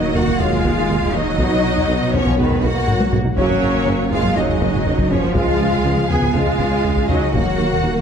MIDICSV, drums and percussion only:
0, 0, Header, 1, 2, 480
1, 0, Start_track
1, 0, Key_signature, -6, "minor"
1, 0, Tempo, 495868
1, 1346, Time_signature, 4, 2, 24, 8
1, 7757, End_track
2, 0, Start_track
2, 0, Title_t, "Taiko and cinematic ensemble drums"
2, 150, Note_on_c, 9, 43, 62
2, 247, Note_off_c, 9, 43, 0
2, 270, Note_on_c, 9, 41, 95
2, 366, Note_off_c, 9, 41, 0
2, 390, Note_on_c, 9, 43, 55
2, 487, Note_off_c, 9, 43, 0
2, 512, Note_on_c, 9, 43, 51
2, 609, Note_off_c, 9, 43, 0
2, 625, Note_on_c, 9, 41, 82
2, 722, Note_off_c, 9, 41, 0
2, 865, Note_on_c, 9, 43, 63
2, 962, Note_off_c, 9, 43, 0
2, 981, Note_on_c, 9, 41, 85
2, 1077, Note_off_c, 9, 41, 0
2, 1106, Note_on_c, 9, 43, 62
2, 1202, Note_off_c, 9, 43, 0
2, 1344, Note_on_c, 9, 41, 96
2, 1441, Note_off_c, 9, 41, 0
2, 1710, Note_on_c, 9, 43, 51
2, 1807, Note_off_c, 9, 43, 0
2, 2070, Note_on_c, 9, 43, 66
2, 2167, Note_off_c, 9, 43, 0
2, 2194, Note_on_c, 9, 41, 93
2, 2291, Note_off_c, 9, 41, 0
2, 2312, Note_on_c, 9, 43, 59
2, 2409, Note_off_c, 9, 43, 0
2, 2431, Note_on_c, 9, 43, 60
2, 2528, Note_off_c, 9, 43, 0
2, 2550, Note_on_c, 9, 41, 80
2, 2646, Note_off_c, 9, 41, 0
2, 2787, Note_on_c, 9, 45, 89
2, 2884, Note_off_c, 9, 45, 0
2, 2909, Note_on_c, 9, 48, 91
2, 3006, Note_off_c, 9, 48, 0
2, 3025, Note_on_c, 9, 45, 100
2, 3122, Note_off_c, 9, 45, 0
2, 3144, Note_on_c, 9, 43, 93
2, 3241, Note_off_c, 9, 43, 0
2, 3268, Note_on_c, 9, 41, 101
2, 3365, Note_off_c, 9, 41, 0
2, 3628, Note_on_c, 9, 43, 50
2, 3725, Note_off_c, 9, 43, 0
2, 3979, Note_on_c, 9, 43, 64
2, 4076, Note_off_c, 9, 43, 0
2, 4097, Note_on_c, 9, 41, 91
2, 4194, Note_off_c, 9, 41, 0
2, 4224, Note_on_c, 9, 43, 61
2, 4321, Note_off_c, 9, 43, 0
2, 4346, Note_on_c, 9, 43, 55
2, 4443, Note_off_c, 9, 43, 0
2, 4465, Note_on_c, 9, 41, 74
2, 4562, Note_off_c, 9, 41, 0
2, 4704, Note_on_c, 9, 43, 62
2, 4801, Note_off_c, 9, 43, 0
2, 4824, Note_on_c, 9, 41, 85
2, 4921, Note_off_c, 9, 41, 0
2, 4942, Note_on_c, 9, 43, 61
2, 5039, Note_off_c, 9, 43, 0
2, 5182, Note_on_c, 9, 41, 101
2, 5278, Note_off_c, 9, 41, 0
2, 5541, Note_on_c, 9, 43, 55
2, 5637, Note_off_c, 9, 43, 0
2, 5899, Note_on_c, 9, 43, 59
2, 5995, Note_off_c, 9, 43, 0
2, 6025, Note_on_c, 9, 41, 85
2, 6122, Note_off_c, 9, 41, 0
2, 6138, Note_on_c, 9, 43, 60
2, 6235, Note_off_c, 9, 43, 0
2, 6256, Note_on_c, 9, 43, 55
2, 6353, Note_off_c, 9, 43, 0
2, 6381, Note_on_c, 9, 41, 78
2, 6477, Note_off_c, 9, 41, 0
2, 6624, Note_on_c, 9, 43, 53
2, 6721, Note_off_c, 9, 43, 0
2, 6740, Note_on_c, 9, 41, 78
2, 6837, Note_off_c, 9, 41, 0
2, 6865, Note_on_c, 9, 43, 68
2, 6962, Note_off_c, 9, 43, 0
2, 7105, Note_on_c, 9, 41, 106
2, 7202, Note_off_c, 9, 41, 0
2, 7469, Note_on_c, 9, 43, 55
2, 7566, Note_off_c, 9, 43, 0
2, 7757, End_track
0, 0, End_of_file